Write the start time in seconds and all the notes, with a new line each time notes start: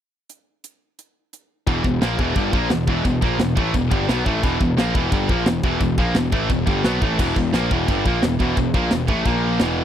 0.29 closed hi-hat
0.64 closed hi-hat
0.99 closed hi-hat
1.33 closed hi-hat
1.67 E1 E2 B2 E3, kick, china
1.84 E1 E2 B2, kick
2.02 A#1 A#2 F3 A#3, snare, china
2.18 E1 E2 B2 E3, kick
2.35 G1 G2 D3 G3, kick, china
2.53 A#1 A#2 F3 A#3, kick
2.70 E1 E2 B2, snare, china
2.87 E1 E2 B2 E3, kick
3.04 E1 E2 B2, kick, china
3.21 A#1 A#2 F3 A#3, kick
3.38 E1 E2 B2, snare, china
3.57 A1 A2 E3 A3, kick
3.73 E1 E2 B2, kick, china
3.91 G1 G2 D3 G3, kick
4.08 B1 B2 F#3 B3, snare, china
4.25 A1 A2 E3 A3, kick
4.43 E1 E2 B2 E3, kick, china
4.59 E1 E2 B2, kick
4.77 A#1 A#2 F3 A#3, snare, china
4.94 E1 E2 B2 E3, kick
5.11 G1 G2 D3 G3, kick, china
5.29 A#1 A#2 F3 A#3, kick
5.45 E1 E2 B2, snare, china
5.63 E1 E2 B2 E3, kick
5.80 E1 E2 B2, kick, china
5.98 A#1 A#2 F3 A#3, kick
6.14 E1 E2 B2, snare, china
6.32 A1 A2 E3 A3, kick
6.49 E1 E2 B2, kick, china
6.66 G1 G2 D3 G3, kick
6.84 B1 B2 F#3 B3, snare, china
7.02 A1 A2 E3 A3, kick
7.19 E1 E2 B2 E3, kick, crash, china
7.36 E1 E2 B2, kick
7.53 A#1 A#2 F3 A#3, snare, china
7.71 E1 E2 B2 E3, kick
7.88 G1 G2 D3 G3, kick, china
8.05 A#1 A#2 F3 A#3, kick
8.22 E1 E2 B2, snare, china
8.40 E1 E2 B2 E3, kick
8.57 E1 E2 B2, kick, china
8.74 A#1 A#2 F3 A#3, kick
8.91 E1 E2 B2, snare, china
9.08 A1 A2 E3 A3, kick
9.25 A#1 A#2 F3 A#3, kick, china
9.59 E1 E2 B2 E3, snare, china